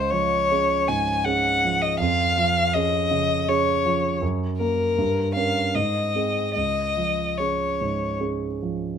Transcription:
Already playing: C#2 C5
0.10 F3 C#5
0.51 C#4 G#4
0.88 G#2 G#5
1.24 C#4 G#4 F#5
1.65 F3
1.81 D#5
1.99 F2 F5
2.38 F3
2.74 C#4 G#4 D#5
3.11 C#3
3.48 C#4 G#4 C#5
3.86 F3
4.22 F#2
4.57 A#3 A#4
4.98 G2
5.34 C#4 A#4 F5
5.74 G#2 D#5
6.15 C4 G#4
6.54 C#2 D#5
6.97 F3
7.37 C#4 G#4 C#5
7.81 G#2
8.21 C#4 G#4
8.62 F3

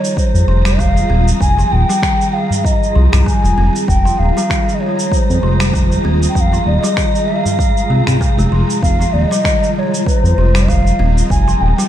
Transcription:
Already playing: D#3 G#3 F4 G#4 C#5 A#5
0.04 shaker
0.17 C5, kick, shaker
0.34 F2, shaker
0.48 F1 F3
0.65 G3, finger snap, shaker
0.79 D#3 F5, kick, shaker
0.97 shaker
1.08 D#1 C4, darbuka ka, darbuka tek
1.28 shaker
1.41 F1 G#5, kick, shaker
1.57 F3, darbuka ka, darbuka tek, shaker
1.72 D#1 G5
1.89 G3, darbuka tek, shaker
2.03 D#3, finger snap, kick, shaker
2.21 shaker
2.33 F5, darbuka ka
2.50 darbuka dum, shaker
2.64 D#5, kick, shaker
2.83 shaker
2.95 C2 F3
3.12 C2 G3, finger snap, darbuka dum, shaker
3.20 A#5
3.26 D#3 G#5, kick, shaker
3.44 F1, darbuka tek, shaker
3.58 F1 C4
3.76 shaker
3.88 F1 G5, kick, shaker
4.05 F3, darbuka ka, darbuka tek, shaker
4.19 D#1 F5, darbuka ka
4.37 G3, darbuka tek, shaker
4.50 D#3, finger snap, kick, shaker
4.69 shaker
4.74 D#5
4.80 C#5, darbuka ka
4.99 shaker
5.12 C5 C#5, kick, shaker
5.29 F2, shaker
5.43 F1 F3
5.60 G3, finger snap, shaker
5.73 D#3, kick, shaker
5.92 shaker
6.04 D#1 C4, darbuka ka, darbuka tek
6.23 shaker
6.29 G5
6.35 F1 G5, kick, shaker
6.40 F5
6.52 F3, darbuka ka, darbuka tek, shaker
6.66 D#1 D#5
6.83 G3, darbuka tek, shaker
6.97 D#3, finger snap, kick, shaker
7.15 shaker
7.28 F5, darbuka ka
7.45 darbuka dum, shaker
7.59 kick, shaker
7.77 shaker
7.90 C2 G#3
8.07 C2 C3, finger snap, darbuka dum, shaker
8.21 C3, kick, shaker
8.38 F1 G#3, darbuka tek, shaker
8.52 F1 F3
8.70 shaker
8.82 F1 D#5 F5, kick, shaker
9.00 F3, darbuka ka, darbuka tek, shaker
9.13 D#1 D#5, darbuka ka
9.31 G3, darbuka tek, shaker
9.45 D#3, finger snap, kick, shaker
9.63 shaker
9.75 C#5 D#5, darbuka ka
9.94 shaker
10.06 C5, kick, shaker
10.24 F2, shaker
10.37 F1 F3
10.55 G3, finger snap, shaker
10.68 D#3 F5, kick, shaker
10.87 shaker
10.99 D#1 C4, darbuka ka, darbuka tek
11.18 shaker
11.30 F1 G#5, kick, shaker
11.47 F3, darbuka ka, darbuka tek, shaker
11.61 D#1 G5
11.69 G#5
11.77 G3 G5, darbuka tek, shaker

